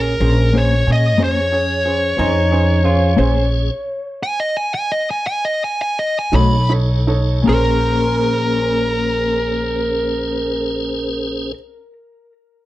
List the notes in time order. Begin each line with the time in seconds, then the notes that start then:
Already playing: A#1 C#4 G#4 A#4 C#5
0.20 A#1 C#4 G#4 C5
0.53 A#3 C#4 G#4 C5
0.58 C#5
0.87 A#2 C#4 G#4 C#5
0.92 D#5
1.18 F2 A#3 C#4 G#4 C5
1.24 C#5
1.52 C#4 G#4 C#5
1.85 C#4 G#4 C5
2.17 F2 C#4 D#4 G#4 C5
2.51 C#4 G#4 C5
2.84 C#4 F4 G#4 C5
3.16 A#1 A#3 C#4 G#4 C5 C#5
4.23 G#5
4.40 D#5
4.57 C5 G#5
4.74 G#5
4.92 D#5
5.11 G#5
5.27 G#5
5.45 D#5
5.64 G#5
5.82 G#5
5.99 D#5
6.19 G#5
6.32 B1 A3 D#4 F#4 A4 C#5 B5
6.69 D#4 A4 C#5
7.07 D#4 A4 C#5
7.42 A#3 C#4 G#4
7.47 A#1 C#4 A#4 C5
7.53 G#4 C5